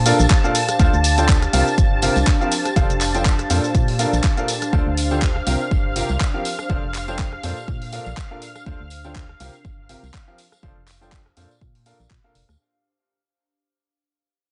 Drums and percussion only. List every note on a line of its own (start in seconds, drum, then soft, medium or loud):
0.06 open hi-hat loud
0.06 tambourine medium
0.06 shaker medium
0.19 tambourine medium
0.19 shaker soft
0.30 kick loud
0.30 clap loud
0.30 closed hi-hat medium
0.30 shaker soft
0.44 shaker soft
0.55 open hi-hat loud
0.55 tambourine medium
0.55 shaker medium
0.68 cross-stick medium
0.68 closed hi-hat medium
0.68 tambourine medium
0.68 shaker soft
0.79 kick loud
0.79 closed hi-hat medium
0.79 tambourine soft
0.79 shaker soft
0.94 shaker soft
1.04 open hi-hat loud
1.04 tambourine medium
1.04 shaker medium
1.18 closed hi-hat soft
1.18 tambourine medium
1.18 shaker soft
1.29 kick loud
1.29 clap loud
1.29 closed hi-hat medium
1.29 tambourine soft
1.29 shaker soft
1.42 cross-stick medium
1.42 closed hi-hat soft
1.42 shaker soft
1.53 open hi-hat loud
1.53 tambourine medium
1.53 shaker medium
1.67 tambourine soft
1.67 shaker soft
1.78 kick loud
1.78 closed hi-hat medium
1.78 tambourine soft
1.78 shaker soft
2.02 open hi-hat loud
2.02 tambourine medium
2.02 shaker medium
2.16 tambourine medium
2.16 shaker soft
2.27 kick loud
2.27 clap loud
2.27 closed hi-hat medium
2.27 tambourine soft
2.27 shaker soft
2.41 shaker soft
2.51 open hi-hat loud
2.51 tambourine loud
2.51 shaker medium
2.65 cross-stick medium
2.65 closed hi-hat soft
2.65 tambourine medium
2.65 shaker soft
2.76 kick loud
2.76 closed hi-hat medium
2.76 tambourine soft
2.76 shaker soft
2.90 closed hi-hat soft
2.90 shaker soft
3.01 clap medium
3.01 open hi-hat loud
3.01 tambourine medium
3.01 shaker medium
3.14 closed hi-hat soft
3.14 tambourine medium
3.14 shaker soft
3.25 kick loud
3.25 clap loud
3.25 closed hi-hat medium
3.25 tambourine soft
3.25 shaker soft
3.39 cross-stick medium
3.39 closed hi-hat soft
3.39 shaker soft
3.50 open hi-hat loud
3.50 tambourine medium
3.50 shaker medium
3.64 tambourine soft
3.64 shaker soft
3.75 kick loud
3.75 closed hi-hat medium
3.75 tambourine soft
3.75 shaker soft
3.88 open hi-hat medium
3.99 open hi-hat loud
3.99 tambourine loud
3.99 shaker medium
4.13 tambourine medium
4.13 shaker soft
4.24 kick loud
4.24 clap loud
4.24 closed hi-hat medium
4.24 tambourine soft
4.24 shaker soft
4.37 closed hi-hat soft
4.37 shaker soft
4.48 open hi-hat loud
4.48 tambourine loud
4.48 shaker medium
4.62 cross-stick medium
4.62 closed hi-hat soft
4.62 tambourine medium
4.62 shaker soft
4.73 kick loud
4.73 tambourine soft
4.97 open hi-hat loud
4.97 tambourine medium
5.11 tambourine medium
5.22 kick loud
5.22 clap loud
5.36 cross-stick medium
5.47 open hi-hat loud
5.47 tambourine medium
5.61 tambourine soft
5.71 kick loud
5.71 tambourine soft
5.96 open hi-hat loud
5.96 tambourine medium
6.09 tambourine soft
6.20 kick loud
6.20 clap loud
6.20 tambourine soft
6.45 open hi-hat loud
6.45 tambourine medium
6.59 cross-stick medium
6.59 tambourine medium
6.69 kick loud
6.69 tambourine soft
6.94 clap medium
6.94 open hi-hat loud
6.94 tambourine medium
7.08 tambourine medium
7.19 kick loud
7.19 clap loud
7.19 tambourine soft
7.32 cross-stick medium
7.43 open hi-hat loud
7.43 tambourine medium
7.57 tambourine soft
7.68 kick loud
7.82 open hi-hat medium
7.92 open hi-hat loud
7.92 tambourine medium
8.06 tambourine medium
8.17 kick loud
8.17 clap loud
8.17 tambourine soft
8.42 open hi-hat loud
8.42 tambourine medium
8.55 cross-stick medium
8.55 tambourine medium
8.66 kick loud
8.66 tambourine soft
8.90 open hi-hat loud
8.90 tambourine medium
9.04 tambourine soft
9.16 kick loud
9.16 clap loud
9.16 tambourine soft
9.29 cross-stick medium
9.40 open hi-hat loud
9.40 tambourine medium
9.53 tambourine soft
9.65 kick loud
9.65 tambourine soft
9.89 open hi-hat loud
9.89 tambourine medium
10.04 tambourine medium
10.14 kick loud
10.14 clap loud
10.14 tambourine soft
10.38 open hi-hat medium
10.38 tambourine medium
10.52 cross-stick medium
10.52 tambourine medium
10.63 kick loud
10.87 clap medium
10.87 open hi-hat loud
10.87 tambourine medium
11.03 tambourine soft
11.12 kick loud
11.12 clap loud
11.26 cross-stick medium
11.37 open hi-hat loud
11.37 tambourine medium
11.51 tambourine soft
11.61 kick loud
11.75 open hi-hat medium
11.86 open hi-hat loud
11.86 tambourine medium
12.00 tambourine soft
12.10 kick loud
12.10 clap loud
12.10 tambourine soft
12.35 open hi-hat medium
12.35 tambourine medium
12.49 cross-stick medium
12.49 tambourine soft